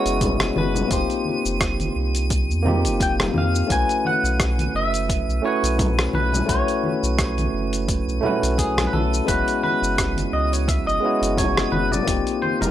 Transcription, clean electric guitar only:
0, 0, Header, 1, 2, 480
1, 0, Start_track
1, 0, Tempo, 697674
1, 625, Time_signature, 4, 2, 24, 8
1, 8744, End_track
2, 0, Start_track
2, 0, Title_t, "Clean electric guitar"
2, 0, Program_c, 0, 27
2, 0, Note_on_c, 0, 73, 100
2, 396, Note_off_c, 0, 73, 0
2, 399, Note_on_c, 0, 71, 95
2, 637, Note_off_c, 0, 71, 0
2, 639, Note_on_c, 0, 72, 88
2, 1325, Note_off_c, 0, 72, 0
2, 2082, Note_on_c, 0, 79, 106
2, 2144, Note_off_c, 0, 79, 0
2, 2324, Note_on_c, 0, 77, 99
2, 2556, Note_off_c, 0, 77, 0
2, 2559, Note_on_c, 0, 80, 117
2, 2796, Note_off_c, 0, 80, 0
2, 2799, Note_on_c, 0, 78, 118
2, 3271, Note_off_c, 0, 78, 0
2, 3274, Note_on_c, 0, 76, 108
2, 3750, Note_off_c, 0, 76, 0
2, 3753, Note_on_c, 0, 73, 94
2, 4202, Note_off_c, 0, 73, 0
2, 4230, Note_on_c, 0, 71, 95
2, 4451, Note_off_c, 0, 71, 0
2, 4465, Note_on_c, 0, 73, 103
2, 5907, Note_on_c, 0, 68, 90
2, 5948, Note_off_c, 0, 73, 0
2, 6089, Note_off_c, 0, 68, 0
2, 6103, Note_on_c, 0, 71, 63
2, 6145, Note_on_c, 0, 69, 91
2, 6146, Note_off_c, 0, 71, 0
2, 6368, Note_off_c, 0, 69, 0
2, 6386, Note_on_c, 0, 71, 97
2, 6609, Note_off_c, 0, 71, 0
2, 6629, Note_on_c, 0, 71, 106
2, 7106, Note_off_c, 0, 71, 0
2, 7109, Note_on_c, 0, 75, 96
2, 7244, Note_off_c, 0, 75, 0
2, 7244, Note_on_c, 0, 73, 84
2, 7350, Note_off_c, 0, 73, 0
2, 7350, Note_on_c, 0, 76, 101
2, 7477, Note_off_c, 0, 76, 0
2, 7480, Note_on_c, 0, 75, 101
2, 7828, Note_off_c, 0, 75, 0
2, 7831, Note_on_c, 0, 73, 94
2, 8060, Note_off_c, 0, 73, 0
2, 8063, Note_on_c, 0, 71, 88
2, 8199, Note_off_c, 0, 71, 0
2, 8199, Note_on_c, 0, 74, 94
2, 8544, Note_off_c, 0, 74, 0
2, 8547, Note_on_c, 0, 72, 94
2, 8677, Note_off_c, 0, 72, 0
2, 8679, Note_on_c, 0, 70, 86
2, 8744, Note_off_c, 0, 70, 0
2, 8744, End_track
0, 0, End_of_file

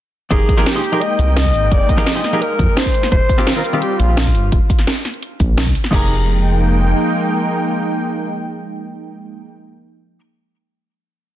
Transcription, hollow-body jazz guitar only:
0, 0, Header, 1, 2, 480
1, 0, Start_track
1, 0, Key_signature, -4, "minor"
1, 0, Tempo, 350877
1, 427, Time_signature, 4, 2, 24, 8
1, 15534, End_track
2, 0, Start_track
2, 0, Title_t, "Hollow-body jazz guitar"
2, 0, Program_c, 0, 26
2, 417, Note_on_c, 0, 53, 104
2, 425, Note_on_c, 0, 63, 92
2, 426, Note_on_c, 0, 67, 97
2, 431, Note_on_c, 0, 68, 98
2, 438, Note_on_c, 0, 70, 113
2, 735, Note_off_c, 0, 53, 0
2, 737, Note_off_c, 0, 63, 0
2, 739, Note_off_c, 0, 67, 0
2, 742, Note_off_c, 0, 68, 0
2, 744, Note_off_c, 0, 70, 0
2, 774, Note_on_c, 0, 53, 100
2, 786, Note_on_c, 0, 63, 92
2, 786, Note_on_c, 0, 67, 92
2, 789, Note_on_c, 0, 68, 92
2, 795, Note_on_c, 0, 70, 113
2, 993, Note_off_c, 0, 53, 0
2, 995, Note_off_c, 0, 63, 0
2, 997, Note_off_c, 0, 67, 0
2, 1000, Note_off_c, 0, 68, 0
2, 1002, Note_off_c, 0, 70, 0
2, 1017, Note_on_c, 0, 53, 87
2, 1024, Note_on_c, 0, 63, 79
2, 1026, Note_on_c, 0, 67, 78
2, 1036, Note_on_c, 0, 68, 80
2, 1036, Note_on_c, 0, 72, 96
2, 1091, Note_off_c, 0, 53, 0
2, 1093, Note_off_c, 0, 63, 0
2, 1095, Note_off_c, 0, 67, 0
2, 1098, Note_off_c, 0, 68, 0
2, 1100, Note_off_c, 0, 72, 0
2, 1257, Note_on_c, 0, 53, 84
2, 1262, Note_on_c, 0, 63, 81
2, 1270, Note_on_c, 0, 67, 78
2, 1271, Note_on_c, 0, 68, 79
2, 1280, Note_on_c, 0, 70, 91
2, 1371, Note_off_c, 0, 53, 0
2, 1374, Note_off_c, 0, 63, 0
2, 1376, Note_off_c, 0, 67, 0
2, 1378, Note_off_c, 0, 68, 0
2, 1381, Note_off_c, 0, 70, 0
2, 2699, Note_on_c, 0, 53, 100
2, 2706, Note_on_c, 0, 63, 93
2, 2712, Note_on_c, 0, 67, 94
2, 2712, Note_on_c, 0, 68, 89
2, 2718, Note_on_c, 0, 70, 108
2, 2915, Note_off_c, 0, 53, 0
2, 2917, Note_off_c, 0, 63, 0
2, 2919, Note_off_c, 0, 67, 0
2, 2921, Note_off_c, 0, 68, 0
2, 2924, Note_off_c, 0, 70, 0
2, 2937, Note_on_c, 0, 53, 88
2, 2949, Note_on_c, 0, 63, 80
2, 2949, Note_on_c, 0, 67, 83
2, 2955, Note_on_c, 0, 68, 78
2, 2959, Note_on_c, 0, 72, 94
2, 3011, Note_off_c, 0, 53, 0
2, 3014, Note_off_c, 0, 63, 0
2, 3017, Note_off_c, 0, 67, 0
2, 3018, Note_off_c, 0, 68, 0
2, 3021, Note_off_c, 0, 72, 0
2, 3180, Note_on_c, 0, 53, 85
2, 3189, Note_on_c, 0, 63, 82
2, 3192, Note_on_c, 0, 68, 78
2, 3193, Note_on_c, 0, 67, 78
2, 3199, Note_on_c, 0, 70, 94
2, 3293, Note_off_c, 0, 53, 0
2, 3295, Note_off_c, 0, 63, 0
2, 3297, Note_off_c, 0, 67, 0
2, 3299, Note_off_c, 0, 68, 0
2, 3302, Note_off_c, 0, 70, 0
2, 4620, Note_on_c, 0, 51, 97
2, 4626, Note_on_c, 0, 60, 89
2, 4632, Note_on_c, 0, 65, 92
2, 4638, Note_on_c, 0, 67, 112
2, 4835, Note_off_c, 0, 51, 0
2, 4838, Note_off_c, 0, 60, 0
2, 4841, Note_off_c, 0, 65, 0
2, 4844, Note_off_c, 0, 67, 0
2, 4862, Note_on_c, 0, 51, 84
2, 4868, Note_on_c, 0, 60, 81
2, 4874, Note_on_c, 0, 65, 80
2, 4882, Note_on_c, 0, 70, 99
2, 4933, Note_off_c, 0, 51, 0
2, 4936, Note_off_c, 0, 60, 0
2, 4939, Note_off_c, 0, 65, 0
2, 4942, Note_off_c, 0, 70, 0
2, 5100, Note_on_c, 0, 51, 90
2, 5107, Note_on_c, 0, 60, 81
2, 5112, Note_on_c, 0, 65, 81
2, 5118, Note_on_c, 0, 67, 99
2, 5212, Note_off_c, 0, 51, 0
2, 5216, Note_off_c, 0, 60, 0
2, 5218, Note_off_c, 0, 65, 0
2, 5221, Note_off_c, 0, 67, 0
2, 8081, Note_on_c, 0, 53, 87
2, 8095, Note_on_c, 0, 63, 82
2, 8108, Note_on_c, 0, 67, 84
2, 8124, Note_on_c, 0, 68, 84
2, 8138, Note_on_c, 0, 70, 97
2, 13931, Note_off_c, 0, 53, 0
2, 13938, Note_off_c, 0, 63, 0
2, 13945, Note_off_c, 0, 67, 0
2, 13953, Note_off_c, 0, 68, 0
2, 13960, Note_off_c, 0, 70, 0
2, 15534, End_track
0, 0, End_of_file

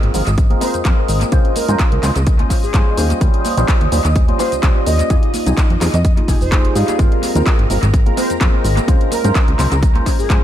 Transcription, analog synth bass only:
0, 0, Header, 1, 2, 480
1, 0, Start_track
1, 0, Key_signature, -4, "major"
1, 0, Tempo, 472441
1, 1344, Time_signature, 4, 2, 24, 8
1, 10605, End_track
2, 0, Start_track
2, 0, Title_t, "Analog synth bass"
2, 0, Program_c, 0, 38
2, 34, Note_on_c, 0, 32, 86
2, 105, Note_off_c, 0, 32, 0
2, 143, Note_on_c, 0, 32, 101
2, 227, Note_off_c, 0, 32, 0
2, 273, Note_on_c, 0, 32, 93
2, 561, Note_off_c, 0, 32, 0
2, 753, Note_on_c, 0, 41, 41
2, 842, Note_off_c, 0, 41, 0
2, 864, Note_on_c, 0, 41, 80
2, 947, Note_off_c, 0, 41, 0
2, 1103, Note_on_c, 0, 32, 93
2, 1265, Note_off_c, 0, 32, 0
2, 1344, Note_on_c, 0, 37, 99
2, 1428, Note_off_c, 0, 37, 0
2, 1713, Note_on_c, 0, 44, 95
2, 1784, Note_off_c, 0, 44, 0
2, 1952, Note_on_c, 0, 37, 88
2, 2024, Note_off_c, 0, 37, 0
2, 2063, Note_on_c, 0, 37, 102
2, 2147, Note_off_c, 0, 37, 0
2, 2193, Note_on_c, 0, 37, 92
2, 2481, Note_off_c, 0, 37, 0
2, 2673, Note_on_c, 0, 44, 42
2, 2762, Note_off_c, 0, 44, 0
2, 2783, Note_on_c, 0, 44, 79
2, 2867, Note_off_c, 0, 44, 0
2, 3024, Note_on_c, 0, 39, 98
2, 3185, Note_off_c, 0, 39, 0
2, 3263, Note_on_c, 0, 39, 92
2, 3347, Note_off_c, 0, 39, 0
2, 3633, Note_on_c, 0, 34, 92
2, 3705, Note_off_c, 0, 34, 0
2, 3873, Note_on_c, 0, 39, 86
2, 3945, Note_off_c, 0, 39, 0
2, 3984, Note_on_c, 0, 39, 96
2, 4067, Note_off_c, 0, 39, 0
2, 4113, Note_on_c, 0, 39, 94
2, 4401, Note_off_c, 0, 39, 0
2, 4594, Note_on_c, 0, 37, 42
2, 4682, Note_off_c, 0, 37, 0
2, 4704, Note_on_c, 0, 37, 82
2, 4787, Note_off_c, 0, 37, 0
2, 4945, Note_on_c, 0, 39, 97
2, 5106, Note_off_c, 0, 39, 0
2, 5183, Note_on_c, 0, 41, 95
2, 5267, Note_off_c, 0, 41, 0
2, 5553, Note_on_c, 0, 36, 93
2, 5625, Note_off_c, 0, 36, 0
2, 5794, Note_on_c, 0, 41, 88
2, 5865, Note_off_c, 0, 41, 0
2, 5903, Note_on_c, 0, 41, 100
2, 5987, Note_off_c, 0, 41, 0
2, 6032, Note_on_c, 0, 41, 92
2, 6320, Note_off_c, 0, 41, 0
2, 6384, Note_on_c, 0, 29, 87
2, 6468, Note_off_c, 0, 29, 0
2, 6513, Note_on_c, 0, 29, 77
2, 6801, Note_off_c, 0, 29, 0
2, 6864, Note_on_c, 0, 44, 96
2, 6947, Note_off_c, 0, 44, 0
2, 7103, Note_on_c, 0, 32, 94
2, 7187, Note_off_c, 0, 32, 0
2, 7472, Note_on_c, 0, 39, 92
2, 7544, Note_off_c, 0, 39, 0
2, 7714, Note_on_c, 0, 32, 84
2, 7785, Note_off_c, 0, 32, 0
2, 7823, Note_on_c, 0, 32, 101
2, 7907, Note_off_c, 0, 32, 0
2, 7952, Note_on_c, 0, 32, 96
2, 8240, Note_off_c, 0, 32, 0
2, 8434, Note_on_c, 0, 41, 44
2, 8522, Note_off_c, 0, 41, 0
2, 8544, Note_on_c, 0, 41, 79
2, 8627, Note_off_c, 0, 41, 0
2, 8784, Note_on_c, 0, 32, 95
2, 8945, Note_off_c, 0, 32, 0
2, 9024, Note_on_c, 0, 37, 94
2, 9107, Note_off_c, 0, 37, 0
2, 9395, Note_on_c, 0, 44, 94
2, 9465, Note_off_c, 0, 44, 0
2, 9633, Note_on_c, 0, 37, 86
2, 9705, Note_off_c, 0, 37, 0
2, 9746, Note_on_c, 0, 37, 105
2, 9828, Note_off_c, 0, 37, 0
2, 9873, Note_on_c, 0, 37, 96
2, 10161, Note_off_c, 0, 37, 0
2, 10354, Note_on_c, 0, 44, 40
2, 10442, Note_off_c, 0, 44, 0
2, 10464, Note_on_c, 0, 44, 80
2, 10547, Note_off_c, 0, 44, 0
2, 10605, End_track
0, 0, End_of_file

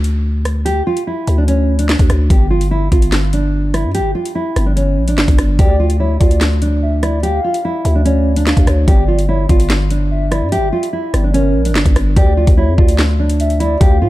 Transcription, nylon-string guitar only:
0, 0, Header, 1, 2, 480
1, 0, Start_track
1, 0, Key_signature, -1, "minor"
1, 0, Tempo, 410959
1, 769, Time_signature, 4, 2, 24, 8
1, 16461, End_track
2, 0, Start_track
2, 0, Title_t, "Nylon-string guitar"
2, 0, Program_c, 0, 24
2, 764, Note_on_c, 0, 67, 107
2, 972, Note_off_c, 0, 67, 0
2, 1013, Note_on_c, 0, 65, 90
2, 1217, Note_off_c, 0, 65, 0
2, 1251, Note_on_c, 0, 64, 85
2, 1589, Note_off_c, 0, 64, 0
2, 1610, Note_on_c, 0, 62, 78
2, 1712, Note_off_c, 0, 62, 0
2, 1725, Note_on_c, 0, 61, 86
2, 2065, Note_off_c, 0, 61, 0
2, 2092, Note_on_c, 0, 62, 79
2, 2654, Note_off_c, 0, 62, 0
2, 2689, Note_on_c, 0, 67, 91
2, 2894, Note_off_c, 0, 67, 0
2, 2926, Note_on_c, 0, 65, 78
2, 3133, Note_off_c, 0, 65, 0
2, 3167, Note_on_c, 0, 64, 85
2, 3373, Note_off_c, 0, 64, 0
2, 3411, Note_on_c, 0, 65, 85
2, 3862, Note_off_c, 0, 65, 0
2, 3894, Note_on_c, 0, 62, 76
2, 4343, Note_off_c, 0, 62, 0
2, 4365, Note_on_c, 0, 64, 80
2, 4572, Note_off_c, 0, 64, 0
2, 4608, Note_on_c, 0, 67, 102
2, 4814, Note_off_c, 0, 67, 0
2, 4846, Note_on_c, 0, 65, 84
2, 5052, Note_off_c, 0, 65, 0
2, 5084, Note_on_c, 0, 64, 81
2, 5425, Note_off_c, 0, 64, 0
2, 5447, Note_on_c, 0, 62, 80
2, 5550, Note_off_c, 0, 62, 0
2, 5563, Note_on_c, 0, 61, 95
2, 5904, Note_off_c, 0, 61, 0
2, 5936, Note_on_c, 0, 62, 72
2, 6497, Note_off_c, 0, 62, 0
2, 6533, Note_on_c, 0, 67, 102
2, 6737, Note_off_c, 0, 67, 0
2, 6771, Note_on_c, 0, 65, 84
2, 6976, Note_off_c, 0, 65, 0
2, 7007, Note_on_c, 0, 64, 87
2, 7213, Note_off_c, 0, 64, 0
2, 7245, Note_on_c, 0, 65, 89
2, 7698, Note_off_c, 0, 65, 0
2, 7733, Note_on_c, 0, 62, 75
2, 8182, Note_off_c, 0, 62, 0
2, 8207, Note_on_c, 0, 64, 81
2, 8413, Note_off_c, 0, 64, 0
2, 8445, Note_on_c, 0, 67, 105
2, 8652, Note_off_c, 0, 67, 0
2, 8693, Note_on_c, 0, 65, 84
2, 8897, Note_off_c, 0, 65, 0
2, 8933, Note_on_c, 0, 64, 82
2, 9269, Note_off_c, 0, 64, 0
2, 9290, Note_on_c, 0, 62, 78
2, 9392, Note_off_c, 0, 62, 0
2, 9406, Note_on_c, 0, 61, 84
2, 9746, Note_off_c, 0, 61, 0
2, 9772, Note_on_c, 0, 62, 78
2, 10334, Note_off_c, 0, 62, 0
2, 10369, Note_on_c, 0, 67, 91
2, 10574, Note_off_c, 0, 67, 0
2, 10606, Note_on_c, 0, 65, 81
2, 10813, Note_off_c, 0, 65, 0
2, 10847, Note_on_c, 0, 64, 86
2, 11053, Note_off_c, 0, 64, 0
2, 11090, Note_on_c, 0, 65, 87
2, 11541, Note_off_c, 0, 65, 0
2, 11573, Note_on_c, 0, 62, 74
2, 12022, Note_off_c, 0, 62, 0
2, 12044, Note_on_c, 0, 64, 80
2, 12251, Note_off_c, 0, 64, 0
2, 12288, Note_on_c, 0, 67, 109
2, 12494, Note_off_c, 0, 67, 0
2, 12527, Note_on_c, 0, 65, 87
2, 12733, Note_off_c, 0, 65, 0
2, 12765, Note_on_c, 0, 64, 83
2, 13105, Note_off_c, 0, 64, 0
2, 13127, Note_on_c, 0, 62, 82
2, 13231, Note_off_c, 0, 62, 0
2, 13243, Note_on_c, 0, 61, 97
2, 13584, Note_off_c, 0, 61, 0
2, 13616, Note_on_c, 0, 62, 72
2, 14176, Note_off_c, 0, 62, 0
2, 14213, Note_on_c, 0, 67, 102
2, 14417, Note_off_c, 0, 67, 0
2, 14450, Note_on_c, 0, 65, 85
2, 14655, Note_off_c, 0, 65, 0
2, 14686, Note_on_c, 0, 64, 89
2, 14892, Note_off_c, 0, 64, 0
2, 14924, Note_on_c, 0, 65, 91
2, 15377, Note_off_c, 0, 65, 0
2, 15412, Note_on_c, 0, 62, 76
2, 15862, Note_off_c, 0, 62, 0
2, 15885, Note_on_c, 0, 64, 83
2, 16092, Note_off_c, 0, 64, 0
2, 16124, Note_on_c, 0, 67, 110
2, 16331, Note_off_c, 0, 67, 0
2, 16371, Note_on_c, 0, 65, 89
2, 16461, Note_off_c, 0, 65, 0
2, 16461, End_track
0, 0, End_of_file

